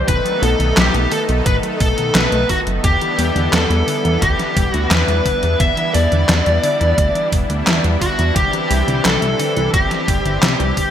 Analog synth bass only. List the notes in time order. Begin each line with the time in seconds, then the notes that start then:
0.08 B1
0.42 B1
0.60 B1
0.77 B1
0.94 B1
1.29 B1
1.46 A1
1.81 B1
1.98 B1
2.15 B1
2.32 B1
2.67 F#1
2.84 E2
3.18 E2
3.36 E2
3.53 E2
3.70 E2
4.05 E2
4.22 D2
4.57 E1
4.74 D2
4.91 E2
5.08 E2
5.43 E2
5.60 E2
5.95 E2
6.12 E2
6.29 E2
6.47 E2
6.81 E2
6.98 D2
7.33 E1
7.50 D2
7.67 E2
7.84 E2
8.19 E2
8.36 C2
8.71 C2
8.88 C2
9.05 C2
9.22 C2
9.57 C2
9.74 G1
10.08 G1
10.26 G1
10.43 C2
10.60 C2